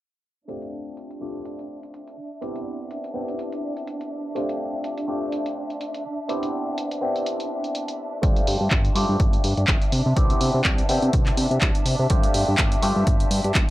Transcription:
0.48 A3 C4 D4 F4 G4 E5, closed hi-hat
0.62 closed hi-hat
0.97 closed hi-hat
1.11 closed hi-hat
1.21 A3 C4 D4 F4 G4
1.45 closed hi-hat
1.59 closed hi-hat
1.83 closed hi-hat
1.94 closed hi-hat
2.07 closed hi-hat
2.41 B3 C4 D4 E4 G4, closed hi-hat
2.56 closed hi-hat
2.91 closed hi-hat
3.04 closed hi-hat
3.14 B3 C4 D4 E4 G4
3.28 closed hi-hat
3.39 closed hi-hat
3.52 closed hi-hat
3.77 closed hi-hat
3.87 closed hi-hat
4.01 closed hi-hat
4.35 A3 C4 D4 F4 G4, closed hi-hat
4.49 closed hi-hat
4.84 closed hi-hat
4.98 closed hi-hat
5.08 A3 C4 D4 F4 G4
5.32 closed hi-hat
5.46 closed hi-hat
5.70 closed hi-hat
5.81 closed hi-hat
5.94 closed hi-hat
6.29 B3 C4 D4 E4 G4, closed hi-hat
6.43 closed hi-hat
6.78 closed hi-hat
6.91 closed hi-hat
7.01 B3 C4 D4 E4 G4
7.16 closed hi-hat
7.26 closed hi-hat
7.40 closed hi-hat
7.64 closed hi-hat
7.75 closed hi-hat
7.88 closed hi-hat
8.22 G1 A3 C4 D4 F4 G4, kick, closed hi-hat
8.36 closed hi-hat
8.47 G2, open hi-hat
8.61 G2
8.71 G1, kick, clap, closed hi-hat
8.85 closed hi-hat
8.95 G2 A3 C4 D4 F4 G4, open hi-hat
9.09 G2
9.20 G1, kick, closed hi-hat
9.33 closed hi-hat
9.44 G2, open hi-hat
9.57 G2, closed hi-hat
9.68 G1, kick, clap, closed hi-hat
9.82 closed hi-hat
9.92 C3, open hi-hat
10.06 C3
10.16 C2 B3 C4 D4 E4 G4, kick, closed hi-hat
10.30 closed hi-hat
10.41 C3, open hi-hat
10.54 C3
10.64 C2, kick, clap, closed hi-hat
10.78 closed hi-hat
10.89 C3 B3 C4 D4 E4 G4, open hi-hat
11.02 C3, closed hi-hat
11.13 C2, kick, closed hi-hat
11.26 clap, closed hi-hat
11.37 C3, open hi-hat
11.51 C3, closed hi-hat
11.61 C2, kick, clap, closed hi-hat
11.75 closed hi-hat
11.86 C3, open hi-hat
11.99 C3
12.10 G1 A3 C4 D4 F4 G4, kick, closed hi-hat
12.23 closed hi-hat
12.34 G2, open hi-hat
12.48 G2
12.58 G1, kick, clap, closed hi-hat
12.72 closed hi-hat
12.82 G2 A3 C4 D4 F4 G4, open hi-hat
12.96 G2
13.07 G1, kick, closed hi-hat
13.20 closed hi-hat
13.31 G2, open hi-hat
13.44 G2, closed hi-hat
13.55 G1, kick, clap, closed hi-hat

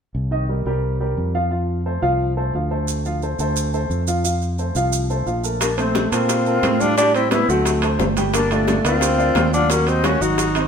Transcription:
0.15 C2
0.31 D#3 D#4 D#5
0.49 G3 G4 A#4
0.66 C2 G3 G4 A#4
1.00 G3 G4 A#4
1.17 F2
1.34 F3 F4 F5
1.51 F3 F4 F5
1.86 A3 A4 C5
2.02 C2 F3 F4 F5
2.37 A3 A4 C5
2.54 D2 F3 F4 F5
2.71 A3 A4 C5
2.88 maracas
3.05 F3 F4 F5, maracas
3.22 A3 A4 C5, maracas
3.39 D2 A3 A4 C5, maracas
3.56 maracas
3.73 A3 A4 C5, maracas
3.90 F2, maracas
4.07 F3 F4 F5, maracas
4.24 F3 F4 F5, maracas
4.42 maracas
4.58 A3 A4 C5, maracas
4.75 C2 F3 F4 F5, maracas
4.93 maracas
5.10 A3 A4 C5, maracas
5.26 A#1 F3 F4 F5, maracas
5.44 A3 A4 A#4, maracas
5.61 A#3 D4, high bongo, high conga, high timbale, maracas
5.78 A3 C4 A4 C5, high conga, high timbale, maracas
5.95 high bongo, high conga, high timbale, maracas
6.12 A#2 A#3 C4 F4 A4 A#4, high conga, high timbale, maracas
6.29 high bongo, high conga, high timbale, maracas
6.46 A#3 A4 A#4, high conga, maracas
6.63 A2, high bongo, low bongo, high conga, high timbale, maracas
6.80 G3 D4 F4 G4 G5, high conga, maracas
6.97 G3 D4 G4 G5, high bongo, high conga, high timbale, maracas
7.14 C4 E4, high bongo, high conga, high timbale, maracas
7.31 B3 C4 E4 C5 E5, high bongo, high conga, high timbale, maracas
7.48 D2 F#3 A3 C4 F#4 F#5, high conga, maracas
7.65 high bongo, high conga, high timbale, maracas
7.82 A3 A4 C5, high bongo, high conga, high timbale, maracas
7.99 G1, high bongo, low bongo, high conga, low timbale, maracas
8.17 G3 G4 G5, high bongo, high conga, high timbale, maracas
8.33 A#3 D4, high bongo, high conga, high timbale, maracas
8.51 A#2 A3 D4 G4 D5, high conga, high timbale, maracas
8.67 high bongo, high conga, high timbale, maracas
8.84 D2 A#3 C4 F4 A#4 D5, high conga, high timbale, maracas
9.01 high bongo, high conga, high timbale, maracas
9.18 A#3 A#4 D5, high conga, maracas
9.35 D#2, high bongo, low bongo, high conga, high timbale, low timbale, maracas
9.53 F#3 D4 F4 F#4 F#5, maracas
9.69 F#3 A#3 C#4 F#4 F#5, high bongo, high conga, high timbale, maracas
9.87 C4 D#4, high bongo, high conga, high timbale, maracas
10.04 A#3 C#4 F#4 A#4 C#5, high bongo, high conga, high timbale, maracas
10.21 G#1 F#3 D#4 F#4 F#5, high conga, maracas
10.38 high bongo, high conga, high timbale, maracas
10.55 C4 C5 D#5, high bongo, high conga, high timbale, maracas

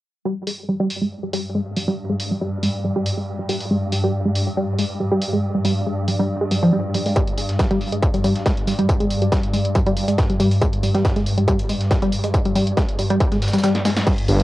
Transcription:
0.25 G2 G3
0.47 G#3, open hi-hat
0.69 G3
0.80 G3
0.90 open hi-hat
1.02 G#3
1.23 G3
1.33 G3, open hi-hat
1.55 G#3
1.76 G3, open hi-hat
1.88 G3
2.09 G#3
2.20 open hi-hat
2.31 G3
2.41 G3
2.63 G#3, open hi-hat
2.84 G3
2.96 G3
3.06 open hi-hat
3.17 G#3
3.39 G3
3.49 G3, open hi-hat
3.61 open hi-hat
3.71 G#3
3.92 G3, open hi-hat
4.04 G3
4.25 G#3
4.35 open hi-hat
4.47 G3
4.57 G3
4.79 G#3, open hi-hat
5.00 G3
5.12 G3
5.22 open hi-hat
5.33 G#3
5.55 G3
5.65 G3, open hi-hat
5.87 G#3
6.08 G3, open hi-hat
6.20 G3
6.41 G#3
6.51 G3, open hi-hat
6.63 F3
6.73 G3
6.94 G3, open hi-hat
7.06 G#3, open hi-hat
7.16 G3, kick, closed hi-hat, tambourine
7.28 closed hi-hat
7.38 G#3, open hi-hat, tambourine
7.49 snare, closed hi-hat
7.59 G3, kick, snare, closed hi-hat, tambourine
7.71 G3, snare, closed hi-hat
7.81 open hi-hat, tambourine
7.92 G#3, closed hi-hat
8.02 kick, closed hi-hat, tambourine
8.14 G3, closed hi-hat
8.24 G3, open hi-hat, tambourine
8.35 snare, closed hi-hat
8.46 G#3, kick, snare, closed hi-hat, tambourine
8.57 closed hi-hat
8.67 G3, snare, open hi-hat, tambourine
8.79 G3, closed hi-hat
8.89 kick, closed hi-hat, tambourine
9.00 G#3, closed hi-hat
9.10 open hi-hat, tambourine
9.22 G3, closed hi-hat
9.32 G3, kick, snare, closed hi-hat, tambourine
9.43 closed hi-hat
9.53 G#3, open hi-hat, tambourine
9.65 closed hi-hat
9.75 G3, kick, closed hi-hat, tambourine
9.86 G3, closed hi-hat
9.97 open hi-hat, tambourine
10.08 G#3, closed hi-hat
10.18 kick, snare, closed hi-hat, tambourine
10.30 G3, closed hi-hat
10.40 G3, open hi-hat, tambourine
10.51 closed hi-hat, open hi-hat
10.61 G#3, kick, closed hi-hat, tambourine
10.73 closed hi-hat
10.83 G3, open hi-hat, tambourine
10.94 G3, snare, closed hi-hat
11.05 kick, snare, closed hi-hat, tambourine
11.16 G#3, snare, closed hi-hat
11.26 open hi-hat, tambourine
11.38 G3, closed hi-hat
11.48 G3, kick, closed hi-hat, tambourine
11.59 closed hi-hat
11.69 G#3, open hi-hat, tambourine
11.81 snare, closed hi-hat
11.91 G3, kick, snare, closed hi-hat, tambourine
12.02 G3, closed hi-hat
12.12 open hi-hat, tambourine
12.24 G#3, closed hi-hat
12.34 kick, closed hi-hat, tambourine
12.45 G3, closed hi-hat
12.56 G3, open hi-hat, tambourine
12.67 closed hi-hat
12.77 G#3, kick, snare, closed hi-hat, tambourine
12.89 closed hi-hat
12.99 G3, open hi-hat, tambourine
13.10 G3, closed hi-hat
13.20 kick, closed hi-hat, tambourine
13.32 G#3, snare, closed hi-hat
13.42 snare, open hi-hat, tambourine
13.48 snare, tambourine
13.53 G3, snare, closed hi-hat, tambourine
13.58 snare, tambourine
13.64 G3, snare, closed hi-hat, tambourine
13.75 snare, closed hi-hat
13.85 G#3, snare, open hi-hat, tambourine
13.97 snare, open hi-hat, tambourine
14.07 G2 G3, kick, closed hi-hat, crash, tambourine
14.18 closed hi-hat
14.28 G1 G#3, open hi-hat, tambourine
14.40 snare, closed hi-hat

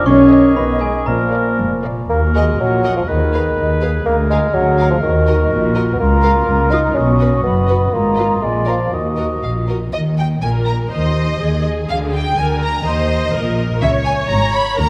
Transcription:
0.06 B1 B2 D#3 C#4 G#4 C#5 D#5 C#6
0.30 G#4 D#5 G#5
0.56 B1 B2 B3 B4 B5
0.81 G#3 G#4 D#5 G#5
1.06 A#1 A#2 F3 A#3 A#4 D5 A#5
1.32 A#4 D5 F5
1.58 F1 G#2
1.83 A#2 A#4 D5 F5
2.09 D#2 A#3 F#4 A#4 A#5
2.35 G#3 A#4 D#5 F#5 G#5
2.59 A#1 A#2 F#3 F#5
2.85 A#4 D#5 F#5
2.96 F3 F5
3.08 D#2 D#3 G#4 B4 D#5
3.33 G#4 B4 F5
3.57 D#2
3.82 G#4 B4 F5
4.06 D2 A#3 A#4 A#5
4.30 G#3 G#4 A#4 F5 G#5
4.54 D2 F#3 F#5
4.78 G#4 A#4 F5
4.91 F3 F5
5.02 D#2 D#3 F#4 D#5
5.27 F#4 A#4 D#5
5.50 A#1 A#2
5.75 F#4 A#4 D#5
5.93 B3
5.99 C#2 A#3 F4 A#4 A#5
6.22 F4 A#4 F5
6.46 C#2
6.70 D#4 F4 A#4 F5 D#6
6.95 B1 B2 C#4 F#4 D#5 C#6
7.19 F#4 B4 D#5
7.44 F#1 F#2 B3 B5
7.67 F#4 B4 D#5
7.92 G#1 G#2 A#3 F4 A#5
8.15 F4 B4 D#5
8.42 A#1 A#2 G#3 D5 G#5
8.65 F3 F4 A#4 D5 F5
8.92 D#2 D#3 F#4 D#5
9.16 F#4 A#4 D#5
9.43 A#1 A#2 F5
9.68 F#4 A#4 D#5
9.93 D#2 D#3 D#5
10.18 G5
10.42 A#1 A#2 A#4 G#5
10.66 A#5
10.90 D#2 D#3 C5 D#5
11.40 D#2 D#3 G#4
11.89 D2 D3 F5
12.13 G5
12.37 D2 D3 A#4 G#5
12.63 A#5
12.85 D#2 D#3 C5 D#5
13.34 A#1 A#2 A#4
13.81 C#2 C#3 C#5 E5
14.05 G#5
14.28 G#1 G#2 A#5
14.53 B5
14.78 D2 D3 A#4 A#5

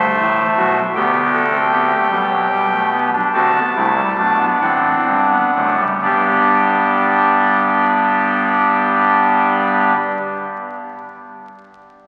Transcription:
Already playing: A3 C5 E5
0.21 A1 A2
0.57 B1 B2 F#4
0.95 D2 D3 B3 G4 G5
1.33 A4
1.51 C4
1.71 B3 G4
1.91 A3
2.10 B1 B2 G3
2.30 F#3
2.52 G3
2.72 A3
2.92 B3
3.13 D4
3.33 D2 D3 C4 F#4 A5
3.55 B3
3.75 C2 C3 A3 E4
3.96 G3
4.18 B1 B2 A3 D4
4.39 B3
4.61 A1 A2 C4 F#5
5.06 G1 G2
5.31 B3
5.55 F#1 F#2 A3
5.77 G3
6.01 G1 G2 G3 B3 D4 G4 D5

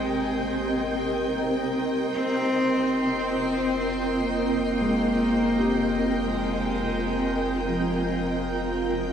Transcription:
Already playing: G#1 G#3 C4 G4 A#4 D#5 G5 G6
2.12 F1 C4
2.44 F4
3.17 C4
4.20 A#3
4.81 G#3
5.59 G4
6.25 G#3
7.66 F3

